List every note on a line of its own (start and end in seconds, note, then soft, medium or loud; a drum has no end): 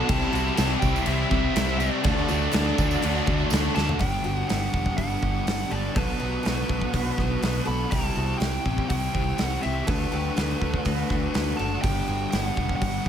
0.00 0.79 A5 loud
0.08 0.26 C2 loud
0.08 0.32 C3 loud
0.08 0.83 C3 loud
0.08 0.57 E3 loud
0.08 0.33 G3 loud
0.08 0.57 G3 loud
0.08 0.33 C4 loud
0.08 0.58 C4 loud
0.08 0.34 E4 loud
0.08 0.32 G4 loud
0.08 kick loud
0.08 tambourine soft
0.08 crash medium
0.12 0.59 G4 loud
0.22 tambourine soft
0.33 0.49 C2 medium
0.33 0.57 C3 medium
0.33 0.57 G3 loud
0.33 0.58 G3 medium
0.33 0.59 C4 medium
0.33 0.58 E4 loud
0.33 0.57 F#4 medium
0.33 tambourine medium
0.48 tambourine soft
0.57 0.74 C2 medium
0.57 1.04 C3 medium
0.57 0.82 C3 loud
0.57 1.05 E3 medium
0.57 0.82 G3 medium
0.57 0.82 G3 loud
0.57 0.81 C4 medium
0.57 0.82 C4 loud
0.57 0.82 E4 loud
0.57 1.07 G4 medium
0.57 0.80 G4 medium
0.57 snare loud
0.57 tambourine loud
0.57 crash medium
0.70 tambourine soft
0.80 0.99 C2 medium
0.80 1.06 C3 medium
0.80 1.06 G3 loud
0.80 1.05 G3 medium
0.80 1.07 C4 medium
0.80 1.07 E4 loud
0.80 1.07 G4 medium
0.80 1.07 G5 medium
0.80 kick medium
0.80 tambourine medium
0.96 tambourine medium
1.03 1.52 C3 medium
1.03 1.30 C3 medium
1.03 1.56 E3 medium
1.03 1.32 G3 medium
1.03 1.79 E5 medium
1.03 crash medium
1.07 1.23 C2 loud
1.07 1.30 G3 loud
1.07 1.31 C4 loud
1.07 1.30 C4 medium
1.07 1.32 E4 loud
1.07 1.29 G4 medium
1.07 tambourine soft
1.30 1.48 C2 medium
1.30 1.53 C3 loud
1.30 1.54 G3 medium
1.30 1.79 G3 medium
1.30 1.78 C4 medium
1.30 1.54 C4 loud
1.30 1.55 E4 loud
1.30 1.77 G4 medium
1.30 kick medium
1.30 tambourine soft
1.53 1.88 C2 medium
1.53 2.02 C3 medium
1.53 1.78 C3 loud
1.53 1.79 G3 loud
1.53 1.80 G3 medium
1.53 1.79 C4 loud
1.53 1.77 C4 medium
1.53 1.79 E4 loud
1.53 snare loud
1.53 tambourine loud
1.53 crash medium
1.69 tambourine soft
1.79 2.03 C3 medium
1.79 2.03 G3 loud
1.79 2.04 G3 medium
1.79 2.03 C4 medium
1.79 2.03 C4 loud
1.79 2.04 E4 loud
1.79 2.03 G4 medium
1.79 3.47 D5 medium
1.79 tambourine medium
2.03 2.21 D2 loud
2.03 2.51 D3 loud
2.03 2.28 D3 loud
2.03 2.29 F#3 loud
2.03 2.52 A3 loud
2.03 2.29 A3 loud
2.03 2.53 D4 loud
2.03 2.29 D4 loud
2.03 2.54 F#4 loud
2.03 2.28 A4 loud
2.03 kick loud
2.03 tambourine soft
2.03 crash medium
2.18 tambourine soft
2.28 2.46 D2 medium
2.28 2.52 D3 loud
2.28 2.52 F#3 medium
2.28 2.53 A3 loud
2.28 2.53 A3 medium
2.28 2.54 D4 medium
2.28 2.51 F#4 medium
2.28 tambourine medium
2.42 tambourine soft
2.52 2.71 D2 medium
2.52 3.01 D3 medium
2.52 2.76 D3 loud
2.52 2.77 F#3 loud
2.52 2.79 A3 medium
2.52 2.77 A3 loud
2.52 2.78 D4 medium
2.52 2.78 D4 loud
2.52 2.75 F#4 medium
2.52 3.02 A4 medium
2.52 snare loud
2.52 tambourine loud
2.52 crash medium
2.67 tambourine soft
2.77 2.95 D2 medium
2.77 2.99 D3 loud
2.77 3.00 F#3 medium
2.77 3.00 A3 medium
2.77 3.01 A3 medium
2.77 3.02 D4 medium
2.77 3.01 D4 loud
2.77 3.03 F#4 medium
2.77 kick medium
2.77 tambourine medium
2.91 tambourine medium
3.00 3.25 D3 loud
3.00 3.51 D3 medium
3.00 3.26 F#3 loud
3.00 3.26 A3 loud
3.00 3.27 A3 medium
3.00 3.26 D4 loud
3.00 3.26 D4 medium
3.00 3.51 F#4 medium
3.00 tambourine soft
3.00 crash medium
3.04 3.20 D2 medium
3.04 3.25 F#4 medium
3.15 tambourine soft
3.26 3.44 D2 medium
3.26 3.50 D3 loud
3.26 3.51 F#3 loud
3.26 3.51 A3 loud
3.26 3.76 A3 medium
3.26 3.75 D4 medium
3.26 3.51 D4 loud
3.26 3.73 F#4 medium
3.26 kick medium
3.26 tambourine soft
3.38 tambourine soft
3.50 3.68 D2 medium
3.50 3.99 D3 medium
3.50 3.74 D3 loud
3.50 3.74 F#3 loud
3.50 3.76 A3 medium
3.50 3.77 A3 medium
3.50 3.76 D4 loud
3.50 3.74 D4 medium
3.50 snare loud
3.50 tambourine loud
3.50 crash medium
3.75 3.92 D2 medium
3.75 3.98 D3 medium
3.75 3.99 F#3 loud
3.75 3.99 A3 loud
3.75 3.99 A3 medium
3.75 3.99 D4 medium
3.75 3.99 D4 loud
3.75 3.98 F#4 medium
3.75 3.99 A4 medium
3.75 4.00 A5 loud
3.75 snare medium
3.88 floor tom loud
3.88 tambourine soft
3.98 4.17 G1 medium
3.98 4.48 G2 medium
3.98 4.49 D3 loud
3.98 4.24 G3 medium
3.98 4.24 B3 medium
3.98 4.24 D4 loud
3.98 4.24 G4 medium
3.98 4.21 G4 loud
3.98 4.48 G5 medium
3.98 kick loud
3.98 open hi-hat medium
4.03 4.51 G3 medium
4.22 4.42 G1 medium
4.22 4.45 G3 medium
4.22 4.48 B3 medium
4.22 4.48 D4 medium
4.22 4.49 F#4 medium
4.22 4.48 G4 medium
4.47 5.45 G2 medium
4.47 4.72 G3 medium
4.47 4.72 B3 medium
4.47 4.71 D4 medium
4.47 4.69 G4 medium
4.47 4.98 G4 medium
4.47 4.97 F#5 medium
4.47 snare loud
4.47 open hi-hat soft
4.51 4.67 G1 medium
4.51 5.24 D3 medium
4.51 5.21 G3 medium
4.70 4.96 G3 medium
4.70 4.96 B3 medium
4.70 4.96 D4 medium
4.70 4.97 G4 medium
4.70 kick medium
4.74 4.91 E1 medium
4.86 kick medium
4.95 5.15 G1 medium
4.95 5.46 G2 medium
4.95 5.46 D3 medium
4.95 5.23 G3 medium
4.95 5.22 B3 medium
4.95 5.22 D4 medium
4.95 5.21 G4 medium
4.95 5.74 F#5 medium
4.95 kick medium
4.95 open hi-hat soft
5.22 5.39 G1 medium
5.22 5.47 D3 medium
5.22 5.46 G3 medium
5.22 5.47 B3 medium
5.22 5.48 D4 medium
5.22 5.49 G4 medium
5.22 kick medium
5.46 5.63 G1 medium
5.46 5.94 G2 medium
5.46 5.71 D3 medium
5.46 5.72 G3 medium
5.46 5.71 B3 medium
5.46 5.71 D4 medium
5.46 snare loud
5.46 open hi-hat medium
5.50 5.69 G4 medium
5.70 5.88 G1 medium
5.70 5.95 D3 medium
5.70 5.95 G3 medium
5.70 5.95 B3 medium
5.70 5.95 D4 medium
5.70 5.94 G4 medium
5.70 5.95 A4 medium
5.70 5.97 D5 medium
5.95 6.13 B1 medium
5.95 6.45 B2 medium
5.95 6.42 F#3 medium
5.95 6.21 B3 medium
5.95 6.19 D4 loud
5.95 6.18 F#4 medium
5.95 6.19 A4 medium
5.95 7.72 B4 medium
5.95 kick loud
5.95 open hi-hat medium
6.19 6.38 B1 medium
6.19 6.43 B3 medium
6.19 6.44 D4 medium
6.19 6.45 F#4 medium
6.19 6.43 F#4 medium
6.43 6.62 B1 medium
6.43 7.41 B2 medium
6.43 6.91 F#3 medium
6.43 6.68 B3 medium
6.43 6.67 D4 medium
6.43 6.65 F#4 medium
6.43 6.93 A4 medium
6.43 snare medium
6.43 open hi-hat soft
6.66 6.86 B1 medium
6.66 6.92 B3 medium
6.66 6.92 D4 medium
6.66 6.93 F#4 medium
6.66 kick medium
6.81 kick medium
6.91 7.10 B1 loud
6.91 7.41 B2 medium
6.91 7.39 F#3 medium
6.91 7.18 B3 medium
6.91 7.17 D4 medium
6.91 7.43 F#4 medium
6.91 7.15 F#4 loud
6.91 kick medium
6.91 open hi-hat medium
7.16 7.35 B1 medium
7.16 7.40 B3 soft
7.16 7.41 D4 medium
7.16 7.42 F#4 medium
7.16 kick medium
7.16 snare soft
7.20 7.43 F#3 medium
7.40 7.59 B1 medium
7.40 7.90 B2 medium
7.40 7.89 F#3 medium
7.40 7.68 B3 medium
7.40 7.66 D4 medium
7.40 7.65 F#4 medium
7.40 snare loud
7.40 open hi-hat medium
7.46 7.66 B3 medium
7.65 7.84 B1 medium
7.65 7.91 B3 medium
7.65 7.90 D4 medium
7.65 7.90 F#4 medium
7.65 7.91 A4 medium
7.65 7.93 B5 loud
7.70 7.92 F#3 medium
7.89 8.08 C2 medium
7.89 8.40 C3 medium
7.89 8.39 E3 medium
7.89 8.17 G3 loud
7.89 8.16 E4 loud
7.89 8.15 G4 medium
7.89 8.38 A5 loud
7.89 kick loud
7.89 open hi-hat medium
7.94 8.42 C4 loud
8.16 8.33 C2 medium
8.16 8.40 G3 medium
8.16 8.41 E4 medium
8.16 8.40 F#4 medium
8.16 8.42 G4 medium
8.38 8.57 C2 medium
8.38 9.35 C3 medium
8.38 8.90 E3 medium
8.38 8.65 G3 medium
8.38 8.90 G4 medium
8.38 8.88 G5 loud
8.38 snare loud
8.38 open hi-hat soft
8.43 9.11 C4 medium
8.43 8.64 E4 medium
8.43 8.63 G4 medium
8.64 8.82 A1 medium
8.64 8.91 G3 medium
8.64 8.91 E4 medium
8.64 8.93 G4 medium
8.64 kick medium
8.78 kick medium
8.89 9.07 C2 medium
8.89 9.39 C3 medium
8.89 9.36 E3 medium
8.89 9.15 G3 medium
8.89 9.14 E4 medium
8.89 9.42 G5 medium
8.89 kick loud
8.89 open hi-hat medium
8.94 9.12 G4 loud
9.13 9.31 C2 medium
9.13 9.38 G3 soft
9.13 9.39 C4 medium
9.13 9.38 E4 medium
9.13 9.40 G4 medium
9.13 kick medium
9.37 9.56 C2 medium
9.37 9.85 C3 medium
9.37 9.86 E3 medium
9.37 9.63 G3 medium
9.37 9.60 C4 medium
9.37 9.62 E4 medium
9.37 snare medium
9.37 open hi-hat soft
9.41 9.61 G4 medium
9.41 9.65 F#5 medium
9.61 9.81 C2 medium
9.61 9.86 G3 medium
9.61 9.85 C4 medium
9.61 9.86 E4 medium
9.61 9.86 G4 medium
9.61 9.87 G4 medium
9.61 9.88 E5 medium
9.84 10.05 D2 medium
9.84 10.35 D3 medium
9.84 10.34 F#3 medium
9.84 10.12 A3 medium
9.84 10.11 D4 medium
9.84 10.10 F#4 loud
9.84 10.11 A4 medium
9.84 11.64 B4 medium
9.84 kick loud
9.84 open hi-hat medium
10.10 10.29 D2 medium
10.10 10.35 A3 medium
10.10 10.36 D4 medium
10.10 10.37 F#4 medium
10.10 10.36 G4 medium
10.35 10.54 D2 medium
10.35 11.32 D3 medium
10.35 10.83 F#3 medium
10.35 10.61 A3 medium
10.35 10.60 D4 medium
10.35 10.59 F#4 medium
10.35 10.86 A4 medium
10.35 snare loud
10.35 open hi-hat soft
10.59 10.78 D2 medium
10.59 10.83 A3 medium
10.59 10.85 D4 medium
10.59 10.85 F#4 medium
10.59 kick medium
10.74 kick medium
10.83 11.02 D2 medium
10.83 11.33 D3 medium
10.83 11.32 F#3 loud
10.83 11.09 A3 medium
10.83 11.08 D4 loud
10.83 11.07 F#4 loud
10.83 11.87 F#4 medium
10.83 kick medium
10.83 open hi-hat medium
11.07 11.27 D2 medium
11.07 11.31 A3 medium
11.07 11.33 D4 medium
11.07 11.34 F#4 medium
11.07 kick medium
11.07 snare soft
11.32 11.52 D2 medium
11.32 11.82 D3 medium
11.32 11.82 F#3 medium
11.32 11.58 A3 medium
11.32 11.58 D4 medium
11.32 11.56 F#4 medium
11.32 snare loud
11.32 open hi-hat soft
11.57 11.76 F#1 medium
11.57 11.82 A3 medium
11.57 11.84 D4 medium
11.57 11.84 F#4 medium
11.57 11.84 A4 medium
11.57 11.81 A5 medium
11.82 12.00 G1 medium
11.82 12.32 G2 medium
11.82 12.32 D3 medium
11.82 12.09 G3 medium
11.82 12.08 B3 loud
11.82 12.08 D4 loud
11.82 12.07 G4 medium
11.82 12.06 G4 medium
11.82 12.30 G5 medium
11.82 kick loud
11.82 open hi-hat medium
12.07 12.25 G1 medium
12.07 12.30 G3 medium
12.07 12.31 B3 medium
12.07 12.33 D4 medium
12.07 12.33 F#4 medium
12.07 12.32 G4 medium
12.31 12.49 G1 medium
12.31 13.09 G2 medium
12.31 13.07 D3 medium
12.31 12.58 G3 medium
12.31 12.58 B3 medium
12.31 12.58 D4 medium
12.31 12.82 G4 medium
12.31 12.56 G4 medium
12.31 12.42 G5 medium
12.31 snare loud
12.31 open hi-hat medium
12.42 12.75 F#5 medium
12.57 12.74 E1 medium
12.57 12.81 G3 medium
12.57 12.82 B3 medium
12.57 12.81 D4 medium
12.57 12.83 G4 medium
12.57 kick medium
12.69 kick medium
12.76 13.09 F#5 medium
12.81 12.98 G1 medium
12.81 13.09 G2 medium
12.81 13.09 D3 medium
12.81 13.07 G3 medium
12.81 13.06 B3 loud
12.81 13.05 D4 medium
12.81 13.04 G4 loud
12.81 kick medium
12.81 open hi-hat soft
13.05 13.09 G3 medium
13.05 13.09 G4 medium